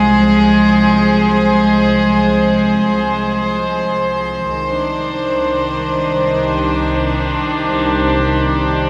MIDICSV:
0, 0, Header, 1, 3, 480
1, 0, Start_track
1, 0, Key_signature, -3, "minor"
1, 0, Tempo, 500000
1, 8541, End_track
2, 0, Start_track
2, 0, Title_t, "String section"
2, 0, Program_c, 0, 48
2, 0, Note_on_c, 0, 53, 59
2, 0, Note_on_c, 0, 56, 67
2, 0, Note_on_c, 0, 68, 71
2, 0, Note_on_c, 0, 72, 58
2, 4271, Note_off_c, 0, 68, 0
2, 4277, Note_off_c, 0, 56, 0
2, 4282, Note_off_c, 0, 53, 0
2, 4292, Note_on_c, 0, 51, 62
2, 4500, Note_on_c, 0, 62, 73
2, 6173, Note_on_c, 0, 67, 59
2, 8541, Note_off_c, 0, 51, 0
2, 8541, Note_off_c, 0, 62, 0
2, 8541, Note_off_c, 0, 67, 0
2, 8541, Note_off_c, 0, 72, 0
2, 8541, End_track
3, 0, Start_track
3, 0, Title_t, "Double bass section"
3, 0, Program_c, 1, 48
3, 0, Note_on_c, 1, 36, 65
3, 4226, Note_off_c, 1, 36, 0
3, 4279, Note_on_c, 1, 36, 67
3, 8541, Note_off_c, 1, 36, 0
3, 8541, End_track
0, 0, End_of_file